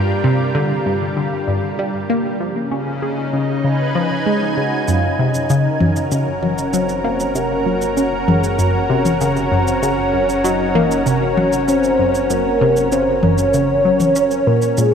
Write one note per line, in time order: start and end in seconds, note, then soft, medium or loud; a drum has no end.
0.00 0.12 G2 medium
0.00 2.40 G3 medium
0.00 2.40 D4 medium
0.00 3.39 F4 medium
0.00 2.40 A#4 medium
0.00 2.40 G5 medium
0.24 0.53 C3 loud
0.55 0.74 D3 loud
0.86 1.05 G2 medium
1.17 1.46 D3 medium
1.48 1.59 G2 medium
1.79 2.08 G3 loud
2.10 2.38 A#3 loud
2.40 4.88 C#3 medium
2.40 2.60 F3 medium
2.72 3.00 C#4 medium
2.90 14.77 C#4 medium
2.90 6.92 D#4 medium
3.02 3.22 G#4 medium
3.33 3.62 C#3 medium
3.52 4.88 B4 medium
3.52 7.27 G#5 medium
3.64 3.83 C#3 medium
3.95 4.24 F3 loud
4.26 4.45 G#3 loud
4.57 4.76 C#3 medium
4.57 4.89 F#5 loud
4.88 14.74 F#1 medium
4.88 5.07 F#2 medium
4.88 5.20 F5 loud
4.88 shaker medium
5.19 5.48 C3 loud
5.19 6.13 D#5 loud
5.34 14.77 A#4 medium
5.34 shaker soft
5.50 5.69 C#3 loud
5.50 shaker medium
5.79 6.00 F#2 medium
5.79 14.77 F#4 medium
5.79 high tom medium
5.96 shaker medium
6.11 6.41 C#3 medium
6.11 6.75 C#5 loud
6.11 shaker medium
6.42 6.54 F#2 medium
6.42 high tom medium
6.58 shaker medium
6.73 7.02 F#3 loud
6.73 7.37 C5 loud
6.73 shaker medium
6.89 shaker soft
7.04 7.33 A#3 loud
7.20 shaker soft
7.35 7.55 C3 medium
7.35 8.29 A#4 loud
7.35 shaker medium
7.66 7.95 F#3 medium
7.82 shaker soft
7.97 8.16 C#4 medium
7.97 shaker medium
8.28 8.57 F#2 medium
8.28 8.60 G#4 medium
8.28 high tom medium
8.44 shaker medium
8.59 8.78 F#2 medium
8.59 9.21 A#4 medium
8.59 shaker medium
8.90 9.19 C3 medium
9.05 high tom medium
9.05 shaker soft
9.21 9.40 C#3 loud
9.21 shaker medium
9.36 shaker soft
9.52 9.71 F#2 medium
9.52 9.84 C5 loud
9.67 shaker medium
9.83 10.12 C#3 medium
9.83 10.46 C#5 loud
9.83 shaker medium
10.13 10.25 F#2 medium
10.29 shaker soft
10.44 10.73 F#3 loud
10.44 11.08 D#5 loud
10.44 shaker medium
10.75 11.04 A#3 loud
10.75 high tom medium
10.91 shaker medium
11.06 11.26 C3 medium
11.06 11.70 C#5 loud
11.06 shaker medium
11.37 11.66 F#3 medium
11.37 high tom medium
11.53 shaker medium
11.68 11.88 C#4 medium
11.68 12.30 C5 loud
11.68 shaker medium
11.84 shaker soft
11.99 12.28 F#2 medium
12.15 shaker medium
12.30 12.49 F#2 medium
12.30 12.94 A#4 loud
12.30 shaker medium
12.61 12.90 C3 loud
12.76 shaker soft
12.92 13.11 C#3 loud
12.92 13.24 C5 loud
12.92 shaker medium
13.23 13.42 F#2 medium
13.23 14.48 C#5 loud
13.23 high tom medium
13.38 shaker soft
13.54 13.83 C#3 medium
13.54 shaker medium
13.85 14.14 F#3 medium
14.00 high tom medium
14.00 shaker medium
14.15 14.45 C#4 medium
14.15 shaker medium
14.31 shaker soft
14.47 14.76 A#2 medium
14.47 14.77 A#4 medium
14.62 shaker medium
14.77 14.94 A#2 medium
14.77 14.94 F3 medium
14.77 14.94 G#4 loud
14.77 shaker medium